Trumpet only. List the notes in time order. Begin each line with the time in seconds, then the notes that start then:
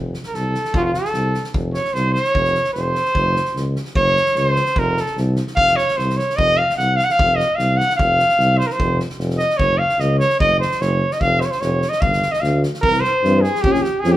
0.27 A#4
0.35 A4
0.76 F4 F#4
0.84 F4
0.92 A4
1.74 C#5
1.93 C5
2.13 C5
2.24 C#5
2.73 C5
3.97 C#5
4.37 C#5
4.48 C5
4.79 A#4
5.01 A4
5.56 F5
5.76 C#5
5.97 C5
6.17 C#5
6.37 D#5
6.58 F5
6.77 F#5
6.96 F5
7.04 F#5
7.11 F5
7.36 D#5
7.56 F5
7.77 F#5
7.96 F5
8.58 C5
8.67 A#4
8.72 C5
9.38 D#5
9.57 C#5
9.79 F5
10.00 D#5
10.19 C#5
10.40 D#5
10.60 C5
10.81 C#5
11.13 D#5
11.21 F5
11.40 C5
11.45 C#5
11.51 C5
11.61 C#5
11.89 D#5
12.01 F5
12.32 D#5
12.41 F5
12.82 A#4
13.00 C5
13.41 G#4
13.62 G4
13.72 G#4
13.82 G4
14.00 G#4
14.12 G4